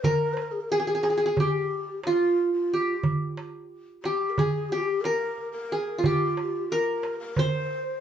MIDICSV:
0, 0, Header, 1, 4, 480
1, 0, Start_track
1, 0, Tempo, 665927
1, 32, Time_signature, 9, 3, 24, 8
1, 5769, End_track
2, 0, Start_track
2, 0, Title_t, "Ney"
2, 0, Program_c, 0, 77
2, 24, Note_on_c, 0, 70, 78
2, 241, Note_on_c, 0, 72, 62
2, 251, Note_off_c, 0, 70, 0
2, 301, Note_on_c, 0, 70, 64
2, 312, Note_off_c, 0, 72, 0
2, 373, Note_on_c, 0, 68, 59
2, 383, Note_off_c, 0, 70, 0
2, 438, Note_on_c, 0, 70, 63
2, 449, Note_off_c, 0, 68, 0
2, 504, Note_on_c, 0, 68, 69
2, 515, Note_off_c, 0, 70, 0
2, 558, Note_on_c, 0, 67, 56
2, 569, Note_off_c, 0, 68, 0
2, 614, Note_on_c, 0, 68, 69
2, 624, Note_off_c, 0, 67, 0
2, 984, Note_on_c, 0, 67, 72
2, 995, Note_off_c, 0, 68, 0
2, 1468, Note_off_c, 0, 67, 0
2, 1472, Note_on_c, 0, 65, 64
2, 1809, Note_off_c, 0, 65, 0
2, 1827, Note_on_c, 0, 65, 58
2, 2166, Note_off_c, 0, 65, 0
2, 2908, Note_on_c, 0, 67, 57
2, 3099, Note_on_c, 0, 70, 45
2, 3110, Note_off_c, 0, 67, 0
2, 3151, Note_on_c, 0, 68, 66
2, 3162, Note_off_c, 0, 70, 0
2, 3381, Note_on_c, 0, 67, 61
2, 3391, Note_off_c, 0, 68, 0
2, 3443, Note_on_c, 0, 65, 52
2, 3454, Note_off_c, 0, 67, 0
2, 3482, Note_on_c, 0, 67, 61
2, 3493, Note_off_c, 0, 65, 0
2, 3613, Note_on_c, 0, 70, 71
2, 3624, Note_off_c, 0, 67, 0
2, 3974, Note_off_c, 0, 70, 0
2, 3978, Note_on_c, 0, 70, 75
2, 4321, Note_off_c, 0, 70, 0
2, 4342, Note_on_c, 0, 67, 77
2, 4839, Note_on_c, 0, 70, 77
2, 4850, Note_off_c, 0, 67, 0
2, 5184, Note_off_c, 0, 70, 0
2, 5188, Note_on_c, 0, 70, 75
2, 5319, Note_on_c, 0, 72, 90
2, 5330, Note_off_c, 0, 70, 0
2, 5769, Note_off_c, 0, 72, 0
2, 5769, End_track
3, 0, Start_track
3, 0, Title_t, "Qanun"
3, 0, Program_c, 1, 107
3, 32, Note_on_c, 1, 70, 87
3, 516, Note_on_c, 1, 68, 77
3, 570, Note_off_c, 1, 68, 0
3, 573, Note_on_c, 1, 68, 55
3, 626, Note_off_c, 1, 68, 0
3, 629, Note_on_c, 1, 68, 62
3, 680, Note_off_c, 1, 68, 0
3, 683, Note_on_c, 1, 68, 57
3, 740, Note_off_c, 1, 68, 0
3, 743, Note_on_c, 1, 68, 58
3, 790, Note_off_c, 1, 68, 0
3, 793, Note_on_c, 1, 68, 49
3, 844, Note_off_c, 1, 68, 0
3, 847, Note_on_c, 1, 68, 61
3, 848, Note_off_c, 1, 70, 0
3, 903, Note_off_c, 1, 68, 0
3, 906, Note_on_c, 1, 68, 59
3, 1009, Note_on_c, 1, 67, 70
3, 1053, Note_off_c, 1, 68, 0
3, 1490, Note_on_c, 1, 65, 76
3, 1914, Note_off_c, 1, 67, 0
3, 1971, Note_on_c, 1, 67, 58
3, 2461, Note_off_c, 1, 65, 0
3, 2876, Note_off_c, 1, 67, 0
3, 2921, Note_on_c, 1, 67, 63
3, 3164, Note_on_c, 1, 68, 69
3, 3207, Note_off_c, 1, 67, 0
3, 3403, Note_on_c, 1, 67, 70
3, 3446, Note_off_c, 1, 68, 0
3, 3641, Note_on_c, 1, 70, 77
3, 4124, Note_on_c, 1, 68, 67
3, 4167, Note_off_c, 1, 67, 0
3, 4313, Note_on_c, 1, 65, 59
3, 4366, Note_on_c, 1, 67, 78
3, 4409, Note_off_c, 1, 68, 0
3, 4457, Note_off_c, 1, 70, 0
3, 4843, Note_on_c, 1, 70, 89
3, 5270, Note_off_c, 1, 67, 0
3, 5284, Note_off_c, 1, 65, 0
3, 5327, Note_on_c, 1, 72, 91
3, 5660, Note_off_c, 1, 70, 0
3, 5769, Note_off_c, 1, 72, 0
3, 5769, End_track
4, 0, Start_track
4, 0, Title_t, "Darbuka"
4, 28, Note_on_c, 9, 64, 85
4, 100, Note_off_c, 9, 64, 0
4, 266, Note_on_c, 9, 63, 57
4, 338, Note_off_c, 9, 63, 0
4, 747, Note_on_c, 9, 63, 59
4, 819, Note_off_c, 9, 63, 0
4, 986, Note_on_c, 9, 64, 84
4, 1058, Note_off_c, 9, 64, 0
4, 1467, Note_on_c, 9, 63, 65
4, 1539, Note_off_c, 9, 63, 0
4, 2187, Note_on_c, 9, 64, 86
4, 2259, Note_off_c, 9, 64, 0
4, 2432, Note_on_c, 9, 63, 57
4, 2504, Note_off_c, 9, 63, 0
4, 2911, Note_on_c, 9, 63, 60
4, 2983, Note_off_c, 9, 63, 0
4, 3155, Note_on_c, 9, 64, 87
4, 3227, Note_off_c, 9, 64, 0
4, 3634, Note_on_c, 9, 63, 66
4, 3706, Note_off_c, 9, 63, 0
4, 3875, Note_on_c, 9, 62, 25
4, 3948, Note_off_c, 9, 62, 0
4, 4352, Note_on_c, 9, 64, 94
4, 4424, Note_off_c, 9, 64, 0
4, 4593, Note_on_c, 9, 63, 62
4, 4666, Note_off_c, 9, 63, 0
4, 5069, Note_on_c, 9, 63, 61
4, 5141, Note_off_c, 9, 63, 0
4, 5308, Note_on_c, 9, 64, 93
4, 5380, Note_off_c, 9, 64, 0
4, 5769, End_track
0, 0, End_of_file